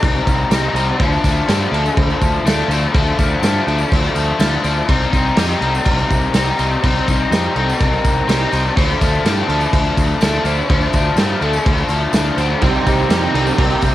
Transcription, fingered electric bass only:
0, 0, Header, 1, 2, 480
1, 0, Start_track
1, 0, Tempo, 485437
1, 984, Time_signature, 4, 2, 24, 8
1, 8665, Tempo, 481541
1, 13833, End_track
2, 0, Start_track
2, 0, Title_t, "Fingered electric bass"
2, 0, Program_c, 0, 33
2, 30, Note_on_c, 0, 36, 107
2, 190, Note_off_c, 0, 36, 0
2, 263, Note_on_c, 0, 36, 81
2, 425, Note_off_c, 0, 36, 0
2, 500, Note_on_c, 0, 36, 88
2, 663, Note_off_c, 0, 36, 0
2, 726, Note_on_c, 0, 36, 106
2, 894, Note_off_c, 0, 36, 0
2, 989, Note_on_c, 0, 38, 98
2, 1149, Note_off_c, 0, 38, 0
2, 1226, Note_on_c, 0, 38, 98
2, 1387, Note_off_c, 0, 38, 0
2, 1465, Note_on_c, 0, 43, 94
2, 1627, Note_off_c, 0, 43, 0
2, 1696, Note_on_c, 0, 38, 83
2, 1861, Note_off_c, 0, 38, 0
2, 1946, Note_on_c, 0, 38, 97
2, 2107, Note_off_c, 0, 38, 0
2, 2189, Note_on_c, 0, 38, 93
2, 2350, Note_off_c, 0, 38, 0
2, 2419, Note_on_c, 0, 38, 89
2, 2583, Note_off_c, 0, 38, 0
2, 2651, Note_on_c, 0, 38, 99
2, 2817, Note_off_c, 0, 38, 0
2, 2911, Note_on_c, 0, 38, 108
2, 3071, Note_off_c, 0, 38, 0
2, 3149, Note_on_c, 0, 38, 105
2, 3310, Note_off_c, 0, 38, 0
2, 3384, Note_on_c, 0, 43, 102
2, 3547, Note_off_c, 0, 43, 0
2, 3628, Note_on_c, 0, 38, 90
2, 3789, Note_off_c, 0, 38, 0
2, 3871, Note_on_c, 0, 38, 91
2, 4031, Note_off_c, 0, 38, 0
2, 4100, Note_on_c, 0, 38, 77
2, 4264, Note_off_c, 0, 38, 0
2, 4343, Note_on_c, 0, 38, 84
2, 4506, Note_off_c, 0, 38, 0
2, 4591, Note_on_c, 0, 38, 96
2, 4751, Note_off_c, 0, 38, 0
2, 4827, Note_on_c, 0, 36, 92
2, 4989, Note_off_c, 0, 36, 0
2, 5070, Note_on_c, 0, 36, 105
2, 5231, Note_off_c, 0, 36, 0
2, 5310, Note_on_c, 0, 41, 95
2, 5471, Note_off_c, 0, 41, 0
2, 5546, Note_on_c, 0, 36, 88
2, 5708, Note_off_c, 0, 36, 0
2, 5792, Note_on_c, 0, 36, 85
2, 5952, Note_off_c, 0, 36, 0
2, 6039, Note_on_c, 0, 36, 84
2, 6196, Note_off_c, 0, 36, 0
2, 6263, Note_on_c, 0, 36, 94
2, 6426, Note_off_c, 0, 36, 0
2, 6514, Note_on_c, 0, 36, 99
2, 6673, Note_off_c, 0, 36, 0
2, 6759, Note_on_c, 0, 36, 102
2, 6916, Note_off_c, 0, 36, 0
2, 7003, Note_on_c, 0, 36, 98
2, 7159, Note_off_c, 0, 36, 0
2, 7223, Note_on_c, 0, 41, 87
2, 7386, Note_off_c, 0, 41, 0
2, 7469, Note_on_c, 0, 36, 92
2, 7629, Note_off_c, 0, 36, 0
2, 7719, Note_on_c, 0, 36, 93
2, 7876, Note_off_c, 0, 36, 0
2, 7954, Note_on_c, 0, 36, 76
2, 8112, Note_off_c, 0, 36, 0
2, 8182, Note_on_c, 0, 36, 85
2, 8344, Note_off_c, 0, 36, 0
2, 8431, Note_on_c, 0, 36, 106
2, 8590, Note_off_c, 0, 36, 0
2, 8671, Note_on_c, 0, 38, 98
2, 8830, Note_off_c, 0, 38, 0
2, 8911, Note_on_c, 0, 38, 105
2, 9071, Note_off_c, 0, 38, 0
2, 9148, Note_on_c, 0, 43, 95
2, 9309, Note_off_c, 0, 43, 0
2, 9385, Note_on_c, 0, 38, 96
2, 9547, Note_off_c, 0, 38, 0
2, 9627, Note_on_c, 0, 38, 95
2, 9788, Note_off_c, 0, 38, 0
2, 9870, Note_on_c, 0, 38, 90
2, 10030, Note_off_c, 0, 38, 0
2, 10112, Note_on_c, 0, 38, 90
2, 10272, Note_off_c, 0, 38, 0
2, 10337, Note_on_c, 0, 38, 101
2, 10502, Note_off_c, 0, 38, 0
2, 10591, Note_on_c, 0, 38, 94
2, 10751, Note_off_c, 0, 38, 0
2, 10830, Note_on_c, 0, 38, 104
2, 10990, Note_off_c, 0, 38, 0
2, 11052, Note_on_c, 0, 43, 92
2, 11219, Note_off_c, 0, 43, 0
2, 11302, Note_on_c, 0, 38, 82
2, 11465, Note_off_c, 0, 38, 0
2, 11553, Note_on_c, 0, 38, 93
2, 11713, Note_off_c, 0, 38, 0
2, 11783, Note_on_c, 0, 38, 88
2, 11946, Note_off_c, 0, 38, 0
2, 12020, Note_on_c, 0, 38, 88
2, 12183, Note_off_c, 0, 38, 0
2, 12258, Note_on_c, 0, 38, 99
2, 12422, Note_off_c, 0, 38, 0
2, 12506, Note_on_c, 0, 36, 107
2, 12667, Note_off_c, 0, 36, 0
2, 12753, Note_on_c, 0, 36, 100
2, 12911, Note_off_c, 0, 36, 0
2, 12981, Note_on_c, 0, 41, 99
2, 13143, Note_off_c, 0, 41, 0
2, 13227, Note_on_c, 0, 36, 88
2, 13387, Note_off_c, 0, 36, 0
2, 13468, Note_on_c, 0, 36, 91
2, 13628, Note_off_c, 0, 36, 0
2, 13711, Note_on_c, 0, 36, 83
2, 13833, Note_off_c, 0, 36, 0
2, 13833, End_track
0, 0, End_of_file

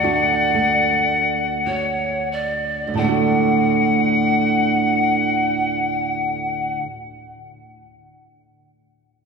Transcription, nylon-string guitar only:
0, 0, Header, 1, 2, 480
1, 0, Start_track
1, 0, Key_signature, 2, "major"
1, 0, Tempo, 1005025
1, 261, Tempo, 1129944
1, 741, Tempo, 1268499
1, 1223, Time_signature, 3, 2, 24, 8
1, 1701, Tempo, 1242236
1, 2661, Tempo, 1321586
1, 3588, End_track
2, 0, Start_track
2, 0, Title_t, "Nylon-string guitar"
2, 0, Program_c, 0, 24
2, 0, Note_on_c, 0, 38, 66
2, 14, Note_on_c, 0, 57, 47
2, 18, Note_on_c, 0, 62, 47
2, 20, Note_on_c, 0, 66, 52
2, 259, Note_off_c, 0, 57, 0
2, 261, Note_on_c, 0, 57, 46
2, 736, Note_off_c, 0, 66, 0
2, 738, Note_on_c, 0, 66, 47
2, 1190, Note_off_c, 0, 38, 0
2, 1194, Note_on_c, 0, 38, 49
2, 1218, Note_on_c, 0, 45, 52
2, 1232, Note_on_c, 0, 50, 58
2, 1247, Note_off_c, 0, 57, 0
2, 1249, Note_on_c, 0, 57, 57
2, 1256, Note_off_c, 0, 62, 0
2, 1258, Note_on_c, 0, 62, 58
2, 1272, Note_off_c, 0, 66, 0
2, 1274, Note_on_c, 0, 66, 55
2, 2683, Note_off_c, 0, 38, 0
2, 2706, Note_off_c, 0, 45, 0
2, 2719, Note_off_c, 0, 50, 0
2, 2735, Note_off_c, 0, 57, 0
2, 2744, Note_off_c, 0, 62, 0
2, 2759, Note_off_c, 0, 66, 0
2, 3588, End_track
0, 0, End_of_file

